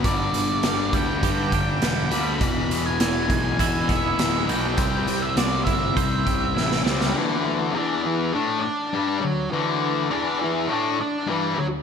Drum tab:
HH |x-x-x-x-x-x-x-x-|x-x-x-x-x-x-x-x-|x-x-x-x-x-x-----|----------------|
SD |----o-------o---|----o-------o---|----o-------oooo|----------------|
BD |o-----o-o-o-----|o-----o-o-o-----|o-----o-o-o-----|----------------|

HH |----------------|
SD |----------------|
BD |----------------|